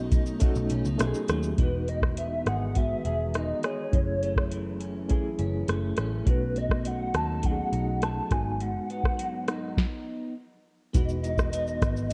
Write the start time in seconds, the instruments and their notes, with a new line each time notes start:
Already playing: picked electric bass B1, clean electric guitar B2 F#3 A3 D#4, reed electric piano A3 C#4 D#4 F#4, ambient pad A3 B3 D#4, soft synth lead D#5
0.12 clean electric guitar D#4, kick, closed hi-hat, shaker
0.26 shaker
0.40 reed electric piano A3 C#4 D#4 F#4, clean electric guitar A3, kick, closed hi-hat, shaker
0.56 picked electric bass B1, shaker
0.70 picked electric bass B1, clean electric guitar C#4, closed hi-hat, shaker
0.85 picked electric bass C#2, clean electric guitar D#4, shaker
0.98 picked electric bass B1, reed electric piano A3 C#4 D#4 G4, clean electric guitar A3, cross-stick, closed hi-hat, shaker
1.07 reed electric piano G#4
1.14 shaker
1.28 picked electric bass D#2, clean electric guitar F#3, cross-stick, closed hi-hat, shaker
1.43 shaker
1.56 picked electric bass E1, clean electric guitar E3, reed electric piano G#3 B3 D#4 F#4, soft synth lead B4, kick, closed hi-hat
1.88 clean electric guitar D#4, soft synth lead D#5, closed hi-hat
2.02 kick, cross-stick
2.17 clean electric guitar B3, soft synth lead E5, closed hi-hat
2.46 picked electric bass G#1, clean electric guitar G#4, soft synth lead F#5, cross-stick, closed hi-hat
2.74 reed electric piano D#3 G#3 B3 F#4, clean electric guitar B3, soft synth lead E5, kick, closed hi-hat
3.05 picked electric bass E1, clean electric guitar G#4, closed hi-hat
3.34 clean electric guitar D#4, soft synth lead D#5, cross-stick, closed hi-hat
3.63 clean electric guitar G#4, soft synth lead C#5, cross-stick, closed hi-hat
3.91 picked electric bass F#1, clean electric guitar F#2, reed electric piano A3 C#4 E4 G#4, kick, closed hi-hat
4.23 clean electric guitar A3, closed hi-hat
4.36 kick, cross-stick
4.51 clean electric guitar E3, closed hi-hat
4.80 clean electric guitar C#4, closed hi-hat
5.08 clean electric guitar E3, reed electric piano A3 C#4 E4 G#4, kick, closed hi-hat
5.39 picked electric bass F#1, clean electric guitar C#4, closed hi-hat
5.68 picked electric bass F#1, clean electric guitar A3, cross-stick, closed hi-hat
5.97 picked electric bass A1, clean electric guitar C#4, cross-stick, closed hi-hat
6.25 picked electric bass B1, clean electric guitar B2, reed electric piano A3 C#4 D#4 F#4, soft synth lead B4, kick, closed hi-hat
6.56 clean electric guitar A3, soft synth lead D#5, closed hi-hat
6.70 kick, cross-stick
6.85 clean electric guitar F#3, soft synth lead F#5, closed hi-hat
7.14 picked electric bass D#2, clean electric guitar D#4, soft synth lead A5, cross-stick, closed hi-hat
7.42 clean electric guitar F#3, reed electric piano A3 C#4 D#4 F#4, soft synth lead F#5, kick, closed hi-hat
7.51 reed electric piano G#4
7.72 picked electric bass B1, clean electric guitar D#4, closed hi-hat
8.02 clean electric guitar A3, soft synth lead A5, cross-stick, closed hi-hat
8.30 picked electric bass G#1, clean electric guitar G#2, reed electric piano G#3 B3 D#4 F#4, soft synth lead G#5, kick, cross-stick, closed hi-hat
8.60 clean electric guitar G#2, soft synth lead F#5, closed hi-hat
8.90 clean electric guitar B3, closed hi-hat
9.04 kick, cross-stick
9.19 clean electric guitar F#3, closed hi-hat
9.48 clean electric guitar D#4, cross-stick, closed hi-hat
9.77 kick, snare
10.93 picked electric bass E1, clean electric guitar E3, reed electric piano G#3 B3 D#4 F#4, soft synth lead D#5, kick, closed hi-hat, shaker
11.09 shaker
11.24 clean electric guitar D#4, closed hi-hat, shaker
11.38 kick, cross-stick, shaker
11.53 clean electric guitar B3, closed hi-hat, shaker
11.68 shaker
11.82 picked electric bass G#1, kick, cross-stick, closed hi-hat, shaker
11.97 shaker